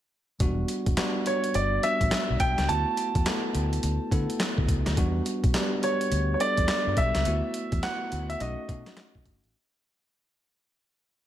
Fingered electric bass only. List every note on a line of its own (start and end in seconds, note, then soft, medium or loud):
0.40 0.62 E1 loud
0.87 0.95 E1 loud
1.55 1.77 G1 medium
2.01 2.09 A1 medium
2.30 2.38 B1 medium
2.40 2.54 B1 medium
2.58 2.67 C#2 medium
2.69 2.83 D2 loud
3.15 3.24 E2 loud
3.55 3.77 D2 medium
3.83 3.97 D2 loud
4.12 4.26 D3 medium
4.58 4.66 D2 medium
4.69 4.82 C#2 medium
4.87 4.95 D2 medium
4.97 5.20 E2 loud
5.44 5.52 B1 medium
6.12 6.34 D2 medium
6.58 6.66 E2 medium
6.87 6.95 G2 medium
6.97 7.11 B1 medium
7.16 7.24 C#2 medium
7.26 7.40 D2 medium
7.72 7.81 E2 medium
8.12 8.34 D2 medium
8.41 8.54 B1 loud
8.69 8.83 B2 loud
9.15 9.24 B1 medium
9.26 9.40 G1 medium
9.44 9.52 A1 medium